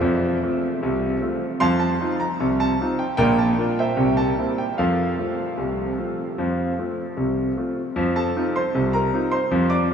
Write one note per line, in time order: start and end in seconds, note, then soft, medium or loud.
0.00 0.35 F2 medium
0.00 0.36 F3 medium
0.00 0.42 F4 medium
0.00 1.17 A4 medium
0.00 1.17 C5 medium
0.43 0.65 A3 soft
0.43 0.65 C4 soft
0.43 0.65 F4 soft
0.83 1.16 C2 medium
0.83 1.16 C3 medium
1.21 1.43 A3 soft
1.21 1.43 C4 soft
1.21 1.44 F4 soft
1.60 1.94 F2 medium
1.60 1.94 F3 medium
1.60 1.79 F5 medium
1.60 1.78 A5 medium
1.60 1.80 C6 loud
1.80 2.17 A5 medium
2.01 2.22 C4 soft
2.01 2.22 D#4 soft
2.01 2.23 F4 soft
2.20 2.51 A#5 medium
2.40 2.73 C2 medium
2.40 2.73 C3 medium
2.60 2.91 A5 medium
2.81 3.02 C4 soft
2.81 3.02 D#4 soft
2.81 3.02 F4 soft
2.99 3.16 G5 medium
3.17 3.51 A#1 medium
3.17 3.51 A#2 medium
3.17 3.36 A#4 medium
3.17 3.36 D5 medium
3.17 3.37 G5 loud
3.39 3.70 A5 medium
3.58 3.79 A#3 soft
3.58 3.80 D4 medium
3.58 3.80 F4 medium
3.79 4.15 C5 medium
3.79 4.15 E5 medium
3.79 4.15 G5 medium
3.97 4.30 C2 medium
3.97 4.30 C3 medium
4.17 4.48 A5 medium
4.38 4.59 A#3 soft
4.38 4.60 C4 soft
4.38 4.60 E4 soft
4.58 4.77 G5 medium
4.78 5.11 F2 medium
4.78 5.12 F3 medium
4.78 7.12 A4 medium
4.78 7.12 C5 medium
4.78 7.12 F5 medium
5.18 5.39 A3 soft
5.18 5.40 C4 soft
5.18 5.40 F4 soft
5.58 5.91 C2 medium
5.58 5.91 C3 medium
5.98 6.19 A3 soft
5.98 6.20 C4 soft
5.98 6.20 F4 soft
6.38 6.71 F2 medium
6.38 6.71 F3 medium
6.78 6.99 A3 soft
6.78 6.99 C4 soft
6.78 7.00 F4 soft
7.17 7.50 C2 soft
7.17 7.50 C3 soft
7.57 7.78 A3 soft
7.57 7.78 C4 soft
7.57 7.79 F4 soft
7.96 8.29 F2 medium
7.96 8.29 F3 medium
8.16 8.52 A4 medium
8.16 8.47 A5 medium
8.36 8.57 C4 soft
8.36 8.57 D#4 soft
8.36 8.58 F4 medium
8.56 8.92 C5 medium
8.56 8.92 C6 medium
8.75 9.08 C2 medium
8.75 9.07 C3 medium
8.93 9.30 A#4 medium
8.93 9.31 A#5 medium
9.13 9.34 C4 soft
9.13 9.35 D#4 medium
9.13 9.36 F4 soft
9.32 9.69 C5 medium
9.32 9.69 C6 medium
9.51 9.85 F2 medium
9.51 9.85 F3 medium
9.70 9.94 D5 medium
9.70 9.94 D6 medium
9.91 9.94 C4 medium
9.91 9.94 D#4 soft